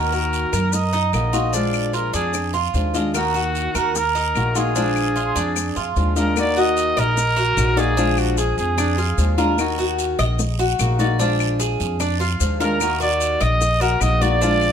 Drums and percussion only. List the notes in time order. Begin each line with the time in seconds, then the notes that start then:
0.13 maracas
0.33 short guiro, maracas
0.53 short guiro, claves, maracas
0.73 long guiro, maracas
0.93 maracas
1.13 short guiro, claves, maracas
1.33 short guiro, maracas
1.53 long guiro, maracas
1.74 claves, maracas
1.94 short guiro, maracas
2.14 short guiro, maracas
2.34 long guiro, claves, maracas
2.54 maracas
2.74 short guiro, maracas
2.94 short guiro, maracas
3.14 long guiro, claves, maracas
3.35 maracas
3.55 short guiro, maracas
3.75 short guiro, claves, maracas
3.95 long guiro, maracas
4.16 maracas
4.35 short guiro, claves, maracas
4.55 short guiro, maracas
4.76 long guiro, maracas
4.96 claves, maracas
5.16 short guiro, maracas
5.36 short guiro, maracas
5.56 long guiro, claves, maracas
5.76 maracas
5.96 short guiro, maracas
6.16 short guiro, maracas
6.37 long guiro, claves, maracas
6.57 maracas
6.77 short guiro, maracas
6.97 short guiro, claves, maracas
7.17 long guiro, maracas
7.37 maracas
7.57 short guiro, claves, maracas
7.77 short guiro, maracas
7.97 long guiro, maracas
8.18 claves, maracas
8.38 short guiro, maracas
8.58 short guiro, maracas
8.78 long guiro, claves, maracas
8.98 maracas
9.18 short guiro, maracas
9.38 short guiro, maracas
9.58 long guiro, claves, maracas
9.79 maracas
9.99 short guiro, maracas
10.19 short guiro, claves, maracas
10.39 long guiro, maracas
10.59 maracas
10.79 short guiro, claves, maracas
10.99 short guiro, maracas
11.20 long guiro, maracas
11.40 claves, maracas
11.60 short guiro, maracas
11.80 short guiro, maracas
12.00 long guiro, claves, maracas
12.21 maracas
12.40 short guiro, maracas
12.61 short guiro, maracas
12.80 long guiro, claves, maracas
13.01 maracas
13.20 short guiro, maracas
13.40 short guiro, claves, maracas
13.61 long guiro, maracas
13.81 maracas
14.01 short guiro, claves, maracas
14.22 short guiro, maracas
14.42 long guiro, maracas
14.62 claves, maracas